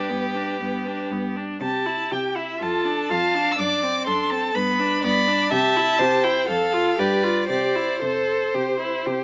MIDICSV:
0, 0, Header, 1, 5, 480
1, 0, Start_track
1, 0, Key_signature, 0, "major"
1, 0, Tempo, 502934
1, 1544, Time_signature, 4, 2, 24, 8
1, 2496, Tempo, 484653
1, 6336, Tempo, 515907
1, 8891, End_track
2, 0, Start_track
2, 0, Title_t, "Violin"
2, 0, Program_c, 0, 40
2, 0, Note_on_c, 0, 71, 48
2, 1028, Note_off_c, 0, 71, 0
2, 1548, Note_on_c, 0, 81, 53
2, 2026, Note_on_c, 0, 79, 43
2, 2040, Note_off_c, 0, 81, 0
2, 2261, Note_on_c, 0, 76, 49
2, 2275, Note_off_c, 0, 79, 0
2, 2500, Note_on_c, 0, 81, 59
2, 2515, Note_off_c, 0, 76, 0
2, 2974, Note_off_c, 0, 81, 0
2, 2980, Note_on_c, 0, 81, 60
2, 3388, Note_on_c, 0, 88, 49
2, 3403, Note_off_c, 0, 81, 0
2, 3454, Note_on_c, 0, 86, 64
2, 3469, Note_off_c, 0, 88, 0
2, 3926, Note_off_c, 0, 86, 0
2, 3932, Note_on_c, 0, 84, 55
2, 4164, Note_on_c, 0, 81, 61
2, 4179, Note_off_c, 0, 84, 0
2, 4407, Note_on_c, 0, 83, 66
2, 4422, Note_off_c, 0, 81, 0
2, 4890, Note_off_c, 0, 83, 0
2, 4898, Note_on_c, 0, 83, 72
2, 5364, Note_off_c, 0, 83, 0
2, 5370, Note_on_c, 0, 81, 78
2, 6079, Note_on_c, 0, 79, 63
2, 6094, Note_off_c, 0, 81, 0
2, 6322, Note_off_c, 0, 79, 0
2, 6328, Note_on_c, 0, 77, 71
2, 6798, Note_on_c, 0, 74, 62
2, 6812, Note_off_c, 0, 77, 0
2, 7259, Note_off_c, 0, 74, 0
2, 7265, Note_on_c, 0, 74, 53
2, 7755, Note_on_c, 0, 72, 39
2, 7769, Note_off_c, 0, 74, 0
2, 8728, Note_off_c, 0, 72, 0
2, 8891, End_track
3, 0, Start_track
3, 0, Title_t, "Violin"
3, 0, Program_c, 1, 40
3, 0, Note_on_c, 1, 67, 41
3, 1306, Note_off_c, 1, 67, 0
3, 2492, Note_on_c, 1, 69, 41
3, 2983, Note_on_c, 1, 77, 49
3, 2998, Note_off_c, 1, 69, 0
3, 3451, Note_off_c, 1, 77, 0
3, 3457, Note_on_c, 1, 74, 47
3, 3930, Note_off_c, 1, 74, 0
3, 3938, Note_on_c, 1, 69, 44
3, 4416, Note_on_c, 1, 71, 49
3, 4431, Note_off_c, 1, 69, 0
3, 4876, Note_off_c, 1, 71, 0
3, 4882, Note_on_c, 1, 74, 52
3, 5352, Note_on_c, 1, 76, 52
3, 5367, Note_off_c, 1, 74, 0
3, 5834, Note_on_c, 1, 72, 51
3, 5849, Note_off_c, 1, 76, 0
3, 6325, Note_off_c, 1, 72, 0
3, 6330, Note_on_c, 1, 69, 54
3, 6791, Note_on_c, 1, 71, 50
3, 6805, Note_off_c, 1, 69, 0
3, 7264, Note_off_c, 1, 71, 0
3, 7269, Note_on_c, 1, 72, 43
3, 8891, Note_off_c, 1, 72, 0
3, 8891, End_track
4, 0, Start_track
4, 0, Title_t, "Viola"
4, 0, Program_c, 2, 41
4, 0, Note_on_c, 2, 62, 33
4, 91, Note_on_c, 2, 59, 31
4, 106, Note_off_c, 2, 62, 0
4, 334, Note_on_c, 2, 62, 31
4, 348, Note_off_c, 2, 59, 0
4, 571, Note_off_c, 2, 62, 0
4, 577, Note_on_c, 2, 59, 31
4, 820, Note_on_c, 2, 62, 33
4, 835, Note_off_c, 2, 59, 0
4, 1065, Note_on_c, 2, 59, 34
4, 1080, Note_off_c, 2, 62, 0
4, 1299, Note_on_c, 2, 62, 31
4, 1313, Note_off_c, 2, 59, 0
4, 1538, Note_off_c, 2, 62, 0
4, 1544, Note_on_c, 2, 67, 37
4, 1776, Note_on_c, 2, 64, 35
4, 1790, Note_off_c, 2, 67, 0
4, 2014, Note_on_c, 2, 67, 34
4, 2028, Note_off_c, 2, 64, 0
4, 2244, Note_on_c, 2, 64, 30
4, 2258, Note_off_c, 2, 67, 0
4, 2477, Note_off_c, 2, 64, 0
4, 2482, Note_on_c, 2, 65, 38
4, 2727, Note_on_c, 2, 62, 35
4, 2741, Note_off_c, 2, 65, 0
4, 2971, Note_on_c, 2, 65, 37
4, 2986, Note_off_c, 2, 62, 0
4, 3218, Note_on_c, 2, 62, 39
4, 3233, Note_off_c, 2, 65, 0
4, 3448, Note_off_c, 2, 62, 0
4, 3454, Note_on_c, 2, 62, 40
4, 3698, Note_on_c, 2, 60, 36
4, 3713, Note_off_c, 2, 62, 0
4, 3937, Note_on_c, 2, 62, 36
4, 3952, Note_off_c, 2, 60, 0
4, 4179, Note_on_c, 2, 60, 37
4, 4194, Note_off_c, 2, 62, 0
4, 4403, Note_off_c, 2, 60, 0
4, 4409, Note_on_c, 2, 59, 42
4, 4652, Note_on_c, 2, 62, 47
4, 4667, Note_off_c, 2, 59, 0
4, 4897, Note_on_c, 2, 59, 42
4, 4912, Note_off_c, 2, 62, 0
4, 5133, Note_on_c, 2, 62, 48
4, 5148, Note_off_c, 2, 59, 0
4, 5372, Note_off_c, 2, 62, 0
4, 5379, Note_on_c, 2, 67, 51
4, 5612, Note_on_c, 2, 64, 45
4, 5627, Note_off_c, 2, 67, 0
4, 5854, Note_on_c, 2, 67, 43
4, 5869, Note_off_c, 2, 64, 0
4, 6081, Note_on_c, 2, 64, 42
4, 6096, Note_off_c, 2, 67, 0
4, 6315, Note_off_c, 2, 64, 0
4, 6320, Note_on_c, 2, 69, 42
4, 6555, Note_on_c, 2, 65, 45
4, 6569, Note_off_c, 2, 69, 0
4, 6783, Note_off_c, 2, 65, 0
4, 6788, Note_on_c, 2, 67, 44
4, 7025, Note_on_c, 2, 65, 41
4, 7039, Note_off_c, 2, 67, 0
4, 7260, Note_off_c, 2, 65, 0
4, 7265, Note_on_c, 2, 67, 37
4, 7510, Note_on_c, 2, 64, 36
4, 7524, Note_off_c, 2, 67, 0
4, 7751, Note_off_c, 2, 64, 0
4, 7757, Note_on_c, 2, 69, 52
4, 8248, Note_on_c, 2, 67, 43
4, 8262, Note_off_c, 2, 69, 0
4, 8476, Note_off_c, 2, 67, 0
4, 8482, Note_on_c, 2, 64, 41
4, 8725, Note_on_c, 2, 67, 42
4, 8739, Note_off_c, 2, 64, 0
4, 8891, Note_off_c, 2, 67, 0
4, 8891, End_track
5, 0, Start_track
5, 0, Title_t, "Cello"
5, 0, Program_c, 3, 42
5, 94, Note_on_c, 3, 43, 41
5, 497, Note_off_c, 3, 43, 0
5, 580, Note_on_c, 3, 43, 41
5, 985, Note_off_c, 3, 43, 0
5, 1055, Note_on_c, 3, 43, 45
5, 1462, Note_off_c, 3, 43, 0
5, 1537, Note_on_c, 3, 48, 45
5, 1942, Note_off_c, 3, 48, 0
5, 2024, Note_on_c, 3, 48, 42
5, 2419, Note_off_c, 3, 48, 0
5, 2491, Note_on_c, 3, 41, 44
5, 2900, Note_off_c, 3, 41, 0
5, 2979, Note_on_c, 3, 41, 50
5, 3382, Note_off_c, 3, 41, 0
5, 3461, Note_on_c, 3, 42, 55
5, 3864, Note_off_c, 3, 42, 0
5, 3937, Note_on_c, 3, 42, 48
5, 4338, Note_off_c, 3, 42, 0
5, 4415, Note_on_c, 3, 43, 53
5, 4816, Note_off_c, 3, 43, 0
5, 4894, Note_on_c, 3, 43, 60
5, 5294, Note_off_c, 3, 43, 0
5, 5372, Note_on_c, 3, 48, 60
5, 5771, Note_off_c, 3, 48, 0
5, 5845, Note_on_c, 3, 48, 57
5, 6251, Note_off_c, 3, 48, 0
5, 6328, Note_on_c, 3, 41, 56
5, 6722, Note_off_c, 3, 41, 0
5, 6799, Note_on_c, 3, 43, 59
5, 7199, Note_off_c, 3, 43, 0
5, 7269, Note_on_c, 3, 48, 47
5, 7680, Note_off_c, 3, 48, 0
5, 7759, Note_on_c, 3, 48, 46
5, 8168, Note_off_c, 3, 48, 0
5, 8247, Note_on_c, 3, 48, 42
5, 8652, Note_off_c, 3, 48, 0
5, 8732, Note_on_c, 3, 48, 48
5, 8891, Note_off_c, 3, 48, 0
5, 8891, End_track
0, 0, End_of_file